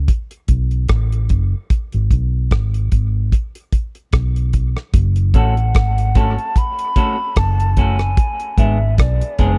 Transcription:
0.08 kick, closed hi-hat
0.31 closed hi-hat
0.48 B1, kick, closed hi-hat
0.71 closed hi-hat
0.89 A1, kick, cross-stick, closed hi-hat
1.12 closed hi-hat
1.29 F#1, kick, closed hi-hat
1.70 kick, closed hi-hat
1.92 G#1, closed hi-hat
2.11 B1, kick, closed hi-hat
2.51 G#1, kick, cross-stick, closed hi-hat
2.74 closed hi-hat
2.92 G#1, kick, closed hi-hat
3.32 kick, closed hi-hat
3.55 closed hi-hat
3.72 kick, closed hi-hat
3.95 closed hi-hat
4.13 B1, kick, cross-stick, closed hi-hat
4.36 closed hi-hat
4.53 kick, closed hi-hat
4.77 cross-stick
4.94 F#1, kick, closed hi-hat
5.16 closed hi-hat
5.34 A1 A3 C#4 F#4 A4 F#5, kick, closed hi-hat
5.57 closed hi-hat
5.75 G#1, kick, cross-stick, closed hi-hat
5.98 closed hi-hat
6.15 A3 C#4 F#4 A4 A5, kick, closed hi-hat
6.39 closed hi-hat
6.56 B5, kick, closed hi-hat
6.79 closed hi-hat
6.96 A3 C#4 F#4 A4, kick, closed hi-hat
7.36 F#1 A5, kick, cross-stick, closed hi-hat
7.60 closed hi-hat
7.77 A3 C#4 F#4 A4 G#5, kick, closed hi-hat
7.99 cross-stick, closed hi-hat
8.17 kick, closed hi-hat
8.40 closed hi-hat
8.58 G#1 G#3 B3 D4 G#4 E5, kick, closed hi-hat
8.98 B1 D5, kick, cross-stick, closed hi-hat
9.21 closed hi-hat
9.39 F#1 G#3 B3 D4 G#4, kick, closed hi-hat

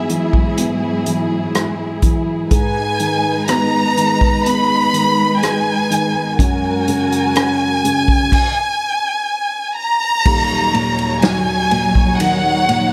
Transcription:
Already playing: G#2 E3 F#3 B3 E4 G#4 E5
0.10 E3, closed hi-hat
0.33 kick
0.58 B3, closed hi-hat
1.06 E3, closed hi-hat
1.55 G#3, cross-stick, closed hi-hat
2.02 E3, kick, closed hi-hat
2.51 G#2 G#3 D#4 B4 G#5, kick, closed hi-hat
3.00 D#3, closed hi-hat
3.48 B3 A#5, cross-stick, closed hi-hat
3.97 D#3, closed hi-hat
4.21 kick
4.46 B3 B5, closed hi-hat
4.93 D#3, closed hi-hat
5.42 G#3 G#5, cross-stick, closed hi-hat
5.91 D#3, closed hi-hat
6.39 F#2 F#4 A#4 G#5, kick, closed hi-hat
6.88 C#3, closed hi-hat
7.12 closed hi-hat
7.36 C#4, cross-stick, closed hi-hat
7.84 C#3, closed hi-hat
8.08 kick
8.32 kick, crash
9.77 A#5
10.25 D#1 D#2 F#3 D#4 C#5, kick, crash
10.74 A#2, ride
10.98 ride
11.22 F#3 G#5, snare, ride
11.71 A#2, ride
11.95 kick
12.19 D#3 F#5, ride
12.68 A#2, ride

